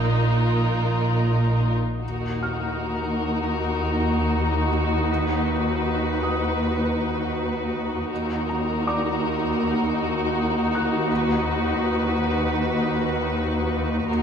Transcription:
Already playing: double bass section A#1, cello section A#2, viola section D#4, violin section F4 A#4 D#6 E6 F#6
2.02 double bass section D#2, cello section D#2, viola section D#4, violin section F#4 A#4
2.43 felt piano F6
5.09 violin section B4
6.23 felt piano D#6
8.10 double bass section D#2, cello section D#2, viola section D#4, violin section F#4 A#4
8.49 felt piano A#5
8.87 felt piano D5 D6
10.75 felt piano F#6
11.10 violin section B4
14.08 cello section D#2, double bass section D#2, viola section D#4, violin section F#4 A#4 A#5 C7

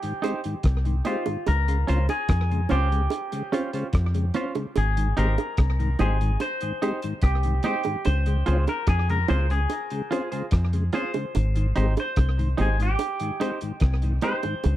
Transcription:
Already playing: clean electric guitar G4
0.03 tonewheel organ G#2 D#3, closed hi-hat
0.22 tonewheel organ G#3 C4 G4, clean electric guitar D#4 G4 C5, closed hi-hat, high bongo
0.44 tonewheel organ G#2 D#3, closed hi-hat
0.63 fingered electric bass C2, kick, cross-stick, closed hi-hat
0.85 tonewheel organ G#2 D#3, closed hi-hat
1.05 tonewheel organ G#3 C4 G4, clean electric guitar D#4 F4 G4 C5, closed hi-hat, low bongo
1.26 tonewheel organ G#2 D#3, closed hi-hat, high bongo
1.47 fingered electric bass C#2, clean electric guitar A#4, closed hi-hat, high bongo
1.68 tonewheel organ C#3 G#3, closed hi-hat
1.87 fingered electric bass C#2, tonewheel organ C4 C#4 F4, clean electric guitar C#4 F4 C5, closed hi-hat
2.09 clean electric guitar G#4, closed hi-hat, high bongo
2.29 fingered electric bass F2, kick, cross-stick, closed hi-hat, high bongo
2.51 tonewheel organ C#3 G#3, closed hi-hat
2.69 fingered electric bass C#2, tonewheel organ C4 C#4 F4, clean electric guitar C#4 F4 G4 C5, closed hi-hat, low bongo
2.92 tonewheel organ C#3 G#3, closed hi-hat
3.10 closed hi-hat, high bongo
3.32 tonewheel organ C#3 G#3, closed hi-hat
3.52 tonewheel organ C4 C#4 F4, clean electric guitar C#4 F4 C5, closed hi-hat, high bongo
3.73 tonewheel organ C#3 G#3, clean electric guitar C#4 F4 C5, closed hi-hat
3.93 fingered electric bass F2, kick, cross-stick, closed hi-hat
4.14 tonewheel organ C#3 G#3, closed hi-hat
4.34 tonewheel organ C4 C#4 F4, clean electric guitar C#4 F4 C5, closed hi-hat, low bongo
4.55 tonewheel organ C#3 G#3, closed hi-hat, high bongo
4.76 fingered electric bass G#1, clean electric guitar G#4, closed hi-hat, high bongo
4.97 tonewheel organ G#2 D#3, closed hi-hat
5.17 fingered electric bass G#1, tonewheel organ G#3 C4 G4, clean electric guitar D#4 G4 A#4 C5, closed hi-hat
5.38 closed hi-hat, high bongo
5.57 fingered electric bass C2, kick, cross-stick, closed hi-hat, high bongo
5.79 tonewheel organ G#2 D#3, closed hi-hat
5.99 fingered electric bass G#1, tonewheel organ G#3 C4 G4, clean electric guitar D#4 G4 G#4 C5, closed hi-hat, low bongo
6.21 tonewheel organ G#2 D#3, closed hi-hat
6.40 clean electric guitar C5, closed hi-hat, high bongo
6.61 tonewheel organ G#2 D#3, closed hi-hat
6.82 tonewheel organ G#3 C4 G4, clean electric guitar D#4 G4 C5, closed hi-hat, high bongo
7.02 tonewheel organ G#2 D#3, closed hi-hat
7.22 fingered electric bass C2, clean electric guitar G4, kick, cross-stick, closed hi-hat
7.43 tonewheel organ G#2 D#3, closed hi-hat
7.63 tonewheel organ G#3 C4 G4, clean electric guitar D#4 G4 C5, closed hi-hat, low bongo
7.84 tonewheel organ G#2 D#3, closed hi-hat, high bongo
8.05 fingered electric bass C#2, clean electric guitar C5, closed hi-hat, high bongo
8.26 tonewheel organ C#3 G#3, closed hi-hat
8.46 fingered electric bass C#2, tonewheel organ C4 C#4 F4, clean electric guitar F4 G#4 C5, closed hi-hat
8.67 clean electric guitar A#4, closed hi-hat, high bongo
8.87 fingered electric bass F2, clean electric guitar G#4, kick, cross-stick, closed hi-hat, high bongo
9.09 tonewheel organ C#3 G#3, clean electric guitar A#4, closed hi-hat
9.28 fingered electric bass C#2, tonewheel organ C4 C#4 F4, clean electric guitar F4 G#4 C5, closed hi-hat, low bongo
9.50 tonewheel organ C#3 G#3, clean electric guitar G#4, closed hi-hat
9.70 closed hi-hat, high bongo
9.90 tonewheel organ C#3 G#3, closed hi-hat
10.11 tonewheel organ C4 C#4 F4, clean electric guitar F4 G#4 C5, closed hi-hat, high bongo
10.32 tonewheel organ C#3 G#3, clean electric guitar F4 G#4 C5, closed hi-hat
10.51 fingered electric bass F2, kick, cross-stick, closed hi-hat
10.73 tonewheel organ C#3 G#3, closed hi-hat
10.93 tonewheel organ C4 C#4 F4, clean electric guitar F4 G#4 C5, closed hi-hat, low bongo
11.14 tonewheel organ C#3 G#3, closed hi-hat, high bongo
11.35 fingered electric bass G#1, closed hi-hat, high bongo
11.55 tonewheel organ G#2 D#3, closed hi-hat
11.76 fingered electric bass G#1, tonewheel organ G#3 C4 G4, clean electric guitar D#4 G4 C5, closed hi-hat
11.97 clean electric guitar C5, closed hi-hat, high bongo
12.16 fingered electric bass C2, kick, cross-stick, closed hi-hat, high bongo
12.38 tonewheel organ G#2 D#3, closed hi-hat
12.57 fingered electric bass G#1, tonewheel organ G#3 C4 G4, clean electric guitar D#4 G4 G#4 C5, closed hi-hat, low bongo
12.79 tonewheel organ G#2 D#3, clean electric guitar G4, closed hi-hat
12.99 closed hi-hat, high bongo
13.20 tonewheel organ G#2 D#3, closed hi-hat
13.40 tonewheel organ G#3 C4 G4, clean electric guitar D#4 G4 C5, closed hi-hat, high bongo
13.61 tonewheel organ G#2 D#3, closed hi-hat
13.80 fingered electric bass C2, kick, cross-stick, closed hi-hat
14.02 tonewheel organ G#2 D#3, closed hi-hat
14.21 tonewheel organ G#3 C4 G4, clean electric guitar D#4 G4 C5, closed hi-hat, low bongo
14.43 tonewheel organ G#2 D#3, closed hi-hat, high bongo
14.64 fingered electric bass C#2, closed hi-hat, high bongo

